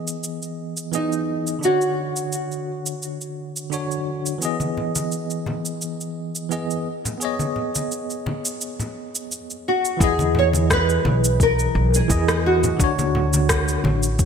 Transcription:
0.00 0.88 E3 medium
0.00 0.89 B3 medium
0.00 0.90 G#4 medium
0.00 0.91 D#5 medium
0.08 shaker medium
0.24 shaker soft
0.42 shaker soft
0.77 shaker medium
0.91 1.13 E3 medium
0.91 1.14 B3 medium
0.91 1.60 D#4 medium
0.91 1.14 G#4 medium
0.91 1.15 D#5 medium
0.91 shaker soft
1.12 shaker soft
1.47 shaker medium
1.59 3.67 D3 medium
1.59 3.68 D4 medium
1.63 3.69 F#4 medium
1.63 4.04 F#4 medium
1.63 3.70 C#5 medium
1.63 shaker soft
1.81 shaker soft
2.16 shaker medium
2.32 shaker soft
2.52 shaker soft
2.86 shaker medium
3.02 shaker soft
3.21 shaker soft
3.56 shaker medium
3.70 3.92 D3 medium
3.70 3.92 D4 medium
3.70 3.93 F#4 medium
3.70 3.94 C#5 medium
3.70 shaker soft
3.91 shaker soft
4.26 shaker medium
4.38 6.46 E3 medium
4.38 6.47 B3 medium
4.38 shaker medium
4.43 6.48 G#4 medium
4.43 6.49 D#5 medium
4.60 high conga medium
4.60 shaker soft
4.77 low conga medium
4.95 high conga medium
4.95 shaker medium
5.12 shaker soft
5.30 shaker soft
5.46 high conga medium
5.46 low conga medium
5.65 shaker medium
5.82 shaker soft
6.01 shaker soft
6.35 shaker medium
6.49 6.71 E3 medium
6.49 6.72 B3 medium
6.49 6.72 G#4 medium
6.49 6.73 D#5 medium
6.49 shaker soft
6.71 shaker soft
7.05 low conga medium
7.05 shaker medium
7.18 9.25 B3 medium
7.18 9.26 G#4 medium
7.18 shaker medium
7.23 9.27 C#5 medium
7.23 9.29 D#5 medium
7.39 high conga loud
7.39 shaker soft
7.56 low conga medium
7.75 high conga medium
7.75 shaker medium
7.92 shaker medium
8.10 shaker soft
8.26 high conga medium
8.26 low conga medium
8.45 shaker medium
8.61 shaker medium
8.80 low conga medium
8.80 shaker soft
9.15 shaker medium
9.32 shaker medium
9.50 shaker soft
9.68 9.99 F#4 medium
9.85 shaker medium
9.97 10.97 E2 medium
9.97 12.04 E3 medium
9.97 12.05 E4 medium
9.97 kick loud
10.01 12.06 G#4 medium
10.01 10.38 G#4 loud
10.01 12.08 D#5 medium
10.01 shaker medium
10.19 high conga medium
10.19 shaker soft
10.35 10.48 C#5 loud
10.35 low conga medium
10.53 high conga medium
10.53 shaker medium
10.70 11.42 B4 loud
10.70 kick loud
10.70 cross-stick medium
10.70 shaker medium
10.89 shaker soft
11.05 11.66 B1 medium
11.05 high conga loud
11.05 low conga medium
11.24 shaker medium
11.40 11.96 A#4 loud
11.40 kick loud
11.40 shaker medium
11.59 shaker soft
11.75 11.99 B1 medium
11.94 12.42 G#4 medium
11.94 shaker medium
12.08 12.71 E2 medium
12.08 12.29 E3 medium
12.08 12.30 E4 medium
12.08 12.31 G#4 medium
12.08 12.31 D#5 medium
12.08 kick loud
12.08 shaker medium
12.28 cross-stick medium
12.28 shaker soft
12.46 13.46 F#4 medium
12.64 low conga medium
12.64 shaker medium
12.77 13.76 D2 loud
12.77 14.25 D3 medium
12.77 14.25 D4 medium
12.77 kick loud
12.77 shaker medium
12.81 14.25 F#4 medium
12.81 14.25 C#5 medium
12.99 high conga loud
12.99 shaker soft
13.15 low conga medium
13.33 high conga medium
13.33 shaker medium
13.49 kick loud
13.49 cross-stick medium
13.49 shaker medium
13.68 shaker soft
13.84 14.25 A1 medium
13.84 high conga loud
13.84 low conga medium
14.03 shaker medium
14.19 kick loud
14.19 shaker medium

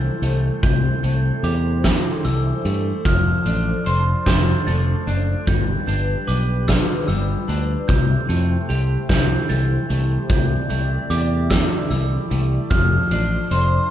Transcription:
0.00 0.23 C3 medium
0.00 1.84 E3 soft
0.00 3.01 G3 medium
0.00 0.23 A3 medium
0.00 1.44 E4 soft
0.00 3.01 E4 medium
0.00 1.04 G4 medium
0.00 5.43 A4 medium
0.00 5.43 C5 medium
0.00 0.63 A6 medium
0.22 0.49 C2 medium
0.22 1.03 A3 soft
0.22 closed hi-hat soft
0.63 0.90 C2 medium
0.63 2.65 C3 soft
0.63 1.02 G6 medium
0.63 kick medium
0.63 closed hi-hat medium
1.03 1.30 C2 medium
1.03 2.64 A3 medium
1.03 1.44 G6 soft
1.03 closed hi-hat soft
1.43 1.97 E2 medium
1.43 3.05 G4 medium
1.43 1.84 D6 medium
1.43 closed hi-hat soft
1.84 3.05 E4 medium
1.84 2.24 E6 medium
1.84 kick medium
1.84 snare medium
1.84 closed hi-hat medium
2.24 2.51 C2 medium
2.24 3.05 E3 soft
2.24 3.05 E6 medium
2.24 closed hi-hat soft
2.65 2.92 G2 medium
2.65 3.05 A3 medium
2.65 closed hi-hat soft
3.05 3.32 F1 medium
3.05 5.07 F3 medium
3.05 7.85 F3 medium
3.05 7.85 D4 medium
3.05 3.86 F6 medium
3.05 kick medium
3.05 closed hi-hat medium
3.46 3.72 A1 medium
3.46 5.06 D4 medium
3.46 closed hi-hat medium
3.86 4.13 F1 medium
3.86 5.47 C5 medium
3.86 closed hi-hat medium
4.26 4.53 F1 medium
4.26 5.48 A4 medium
4.26 4.66 G6 medium
4.26 kick medium
4.26 snare medium
4.26 closed hi-hat medium
4.67 4.93 F1 medium
4.67 5.48 A3 soft
4.67 5.47 A6 medium
4.67 closed hi-hat soft
5.07 5.34 F#1 medium
5.07 5.47 D4 medium
5.07 closed hi-hat soft
5.47 5.74 G1 medium
5.47 7.08 G3 medium
5.47 7.86 G4 medium
5.47 7.86 B4 medium
5.47 5.86 G6 medium
5.47 kick medium
5.47 closed hi-hat medium
5.87 6.14 G1 medium
5.87 7.47 D4 medium
5.87 6.28 G6 medium
5.87 closed hi-hat soft
6.27 6.81 B1 medium
6.27 7.89 B4 medium
6.27 6.68 D6 medium
6.27 closed hi-hat soft
6.68 7.89 F4 medium
6.68 7.07 E6 medium
6.68 kick medium
6.68 snare medium
6.68 closed hi-hat medium
7.08 7.35 G1 medium
7.08 8.32 G3 medium
7.08 7.88 E6 medium
7.08 closed hi-hat soft
7.48 7.75 D2 medium
7.48 7.89 D4 soft
7.48 closed hi-hat soft
7.88 8.15 C2 medium
7.88 9.90 C3 soft
7.88 13.90 A3 medium
7.88 12.67 E4 medium
7.88 12.67 G4 medium
7.88 10.28 C5 medium
7.88 8.69 G6 medium
7.88 kick medium
7.88 closed hi-hat medium
8.29 8.56 F2 medium
8.29 9.89 A3 medium
8.29 closed hi-hat soft
8.69 8.96 C2 medium
8.69 10.70 G4 medium
8.69 closed hi-hat soft
9.09 9.36 C2 medium
9.09 11.10 E4 medium
9.09 9.50 G6 medium
9.09 kick medium
9.09 snare medium
9.09 closed hi-hat medium
9.49 9.76 C2 medium
9.49 11.51 E3 medium
9.49 10.30 A6 medium
9.49 closed hi-hat medium
9.90 10.17 C2 medium
9.90 10.69 A3 soft
9.90 closed hi-hat medium
10.29 10.56 C2 medium
10.29 12.31 C3 medium
10.29 12.68 D5 medium
10.29 10.69 G6 medium
10.29 kick medium
10.29 closed hi-hat medium
10.70 10.97 C2 medium
10.70 12.30 A3 medium
10.70 11.10 G6 medium
10.70 closed hi-hat medium
11.10 11.63 E2 medium
11.10 12.71 G4 medium
11.10 11.50 D6 medium
11.10 closed hi-hat medium
11.50 12.71 E4 medium
11.50 11.89 E6 medium
11.50 kick medium
11.50 snare medium
11.50 closed hi-hat medium
11.90 12.17 C2 medium
11.90 12.71 E3 medium
11.90 12.71 E6 medium
11.90 closed hi-hat medium
12.31 12.58 C2 medium
12.31 12.71 A3 medium
12.31 closed hi-hat medium
12.70 12.97 F1 medium
12.70 13.90 F3 medium
12.70 13.90 D4 medium
12.70 13.90 F4 medium
12.70 13.90 C5 medium
12.70 13.51 F6 medium
12.70 kick medium
12.70 closed hi-hat medium
13.11 13.38 A1 medium
13.11 13.90 D4 medium
13.11 closed hi-hat medium
13.51 13.78 F1 medium
13.51 13.90 C5 medium
13.51 closed hi-hat medium

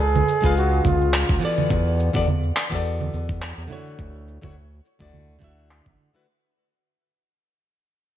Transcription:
0.00 0.24 C#2 medium
0.00 0.56 G#4 medium
0.00 shaker soft
0.16 low conga medium
0.16 shaker soft
0.28 shaker medium
0.41 0.81 C#2 medium
0.41 1.38 C#3 medium
0.41 1.38 G#3 medium
0.41 1.39 F4 medium
0.41 kick medium
0.41 shaker soft
0.45 1.40 B4 medium
0.45 1.40 F5 medium
0.57 0.87 F#4 medium
0.57 shaker soft
0.73 shaker soft
0.85 1.24 C#2 medium
0.85 1.42 F4 medium
0.85 kick medium
0.85 low conga medium
0.85 shaker medium
1.01 shaker soft
1.14 clap medium
1.14 shaker soft
1.29 1.39 C#2 medium
1.29 kick loud
1.29 shaker soft
1.39 2.10 E3 medium
1.39 2.10 B3 medium
1.39 2.11 F#4 medium
1.39 shaker medium
1.44 2.12 A4 medium
1.44 2.12 D5 medium
1.58 low conga medium
1.58 shaker soft
1.70 2.10 E2 medium
1.70 kick loud
1.70 shaker soft
1.87 shaker soft
1.99 shaker medium
2.13 2.52 E2 medium
2.13 2.25 E3 medium
2.13 2.26 B3 medium
2.13 2.26 F#4 medium
2.13 2.26 A4 medium
2.13 2.27 D5 loud
2.13 kick loud
2.13 shaker soft
2.28 low conga medium
2.28 shaker soft
2.44 shaker soft
2.56 clap medium
2.56 shaker medium
2.70 3.09 E2 medium
2.70 3.66 E3 medium
2.70 3.67 B3 medium
2.70 3.67 F#4 medium
2.70 3.68 A4 medium
2.70 kick medium
2.70 shaker soft
2.75 3.68 D5 medium
2.85 shaker soft
3.01 low conga medium
3.01 shaker soft
3.14 3.53 E2 medium
3.14 shaker medium
3.29 kick loud
3.29 shaker soft
3.42 clap medium
3.42 shaker soft
3.58 3.68 E2 medium
3.58 shaker soft
3.67 4.38 D3 medium
3.67 4.38 A3 medium
3.67 4.39 E4 medium
3.67 low conga medium
3.67 shaker medium
3.71 4.40 F#4 medium
3.71 4.41 C#5 medium
3.87 shaker soft
3.99 4.38 D2 medium
3.99 kick loud
3.99 shaker soft
4.16 shaker soft
4.28 shaker medium
4.42 4.81 D2 medium
4.42 4.54 D3 medium
4.42 4.54 A3 medium
4.42 4.54 E4 medium
4.42 4.55 F#4 medium
4.42 4.55 C#5 medium
4.42 kick loud
4.42 low conga medium
4.42 shaker soft
4.57 shaker soft
4.72 shaker soft
4.85 shaker medium
4.99 5.38 D2 medium
4.99 5.38 D3 medium
4.99 5.39 A3 medium
4.99 5.39 E4 medium
4.99 5.39 F#4 medium
4.99 5.40 D5 medium
4.99 kick medium
4.99 shaker soft
5.14 low conga medium
5.14 shaker soft
5.30 shaker soft
5.39 5.81 D2 medium
5.39 6.09 D3 medium
5.39 6.10 A3 medium
5.39 6.11 E4 medium
5.39 kick medium
5.39 shaker medium
5.43 6.11 F#4 medium
5.43 6.12 E5 medium
5.58 shaker soft
5.71 clap medium
5.86 5.96 A1 medium
5.86 kick loud
5.86 low conga medium
5.86 shaker soft
6.00 shaker medium
6.13 6.25 D3 medium
6.13 6.25 A3 medium
6.13 6.26 E4 medium
6.13 6.26 F#4 medium
6.13 6.26 B4 medium

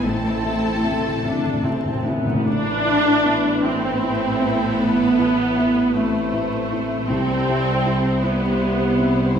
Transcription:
0.00 2.21 A1 medium
0.00 2.45 A2 medium
0.00 0.43 A2 medium
0.00 2.06 A3 medium
0.00 1.17 C4 medium
0.00 0.63 E4 soft
0.00 1.14 E4 medium
0.00 2.06 A4 medium
0.00 0.82 E5 medium
0.00 2.05 A5 medium
0.00 1.44 E6 medium
0.11 0.18 A2 soft
0.20 0.26 A2 soft
0.20 2.25 E3 soft
0.27 0.35 A2 soft
0.36 0.43 A2 soft
0.43 0.51 A2 soft
0.43 2.05 C4 soft
0.43 0.80 E4 soft
0.43 0.80 E5 soft
0.59 0.66 A2 soft
0.64 0.74 A2 soft
0.64 4.54 E4 soft
0.75 0.82 A2 soft
0.83 0.90 A2 soft
0.83 1.20 C4 soft
0.83 1.21 E4 soft
0.83 1.23 E5 soft
0.83 1.21 E5 soft
0.91 0.98 A2 medium
0.99 1.06 A2 medium
1.04 4.94 A4 soft
1.08 1.14 A2 medium
1.15 1.22 A2 medium
1.23 1.29 A2 medium
1.23 1.61 C4 soft
1.23 1.62 D4 medium
1.23 1.61 E4 soft
1.23 1.64 E5 soft
1.23 1.61 E5 soft
1.30 1.37 A2 medium
1.38 1.45 A2 medium
1.45 1.52 A2 medium
1.45 5.35 E6 soft
1.54 1.61 A2 medium
1.62 1.69 A2 medium
1.62 2.06 C4 medium
1.62 2.02 E4 soft
1.62 3.64 E5 soft
1.62 2.02 E5 soft
1.70 1.76 A2 medium
1.77 1.84 A2 medium
1.85 1.92 A2 medium
1.93 2.00 A2 medium
2.01 2.08 A2 medium
2.06 2.16 A2 medium
2.06 2.46 B3 medium
2.06 2.42 C4 soft
2.06 5.96 C4 soft
2.06 2.42 E4 soft
2.06 2.42 E5 soft
2.17 2.24 A2 medium
2.25 2.32 A2 loud
2.25 2.49 E3 soft
2.33 2.40 A2 loud
2.46 7.05 A1 medium
2.46 2.84 A2 medium
2.46 7.05 A2 medium
2.46 4.79 A2 medium
2.46 7.05 E3 medium
2.46 3.61 D4 loud
2.46 7.04 E4 medium
2.46 7.05 E4 medium
2.46 7.04 B4 medium
2.85 5.18 E3 soft
2.85 3.21 E4 soft
2.85 3.21 E5 soft
3.25 7.12 A3 soft
3.25 3.61 B3 soft
3.25 3.61 E4 soft
3.25 3.61 E5 soft
3.65 3.99 B3 soft
3.65 4.81 C4 medium
3.65 4.00 E4 soft
3.65 5.91 A4 medium
3.65 4.42 E5 soft
3.65 4.00 E5 soft
4.03 4.38 E4 soft
4.03 4.38 E5 soft
4.40 4.75 B3 soft
4.40 4.76 E4 soft
4.40 4.76 E5 soft
4.40 5.94 E5 medium
4.80 5.17 A2 medium
4.80 7.12 A2 medium
4.80 5.95 B3 medium
5.19 7.12 E3 soft
5.19 5.53 E4 soft
5.19 5.53 E5 soft
5.57 5.91 B3 soft
5.57 5.92 E4 soft
5.57 5.92 E5 soft
5.94 7.06 A3 medium
5.94 6.29 C4 soft
5.94 6.29 E4 soft
5.94 7.06 C5 medium
5.94 6.70 E5 soft
5.94 6.30 E5 soft
6.34 6.67 E4 soft
6.34 6.67 E5 soft
6.71 7.06 C4 soft
6.71 7.06 E4 soft
6.71 8.22 E5 soft
6.71 7.06 E5 soft
7.08 9.39 C2 medium
7.08 7.46 C2 medium
7.08 9.34 C3 medium
7.08 9.39 C3 medium
7.08 9.39 G3 medium
7.08 8.23 C4 medium
7.08 9.39 E4 medium
7.08 9.39 G4 medium
7.08 8.22 A4 medium
7.08 9.39 C5 medium
7.46 9.39 G3 soft
7.46 7.82 E4 soft
7.46 7.82 E5 soft
7.85 9.39 C4 soft
7.85 8.19 C4 soft
7.85 8.19 E4 soft
7.85 8.19 E5 soft
8.22 9.35 B3 medium
8.22 8.56 C4 soft
8.22 8.57 E4 soft
8.22 8.60 G4 medium
8.22 8.96 E5 soft
8.22 8.57 E5 soft
8.59 8.97 F4 medium
8.59 9.39 G4 soft
8.59 8.94 G4 soft
8.59 8.94 E5 soft
8.98 9.32 C4 soft
8.98 9.39 E4 medium
8.98 9.32 E4 soft
8.98 9.39 E5 soft
8.98 9.32 E5 soft
9.35 9.39 C2 medium
9.35 9.39 C3 medium
9.35 9.39 A3 medium

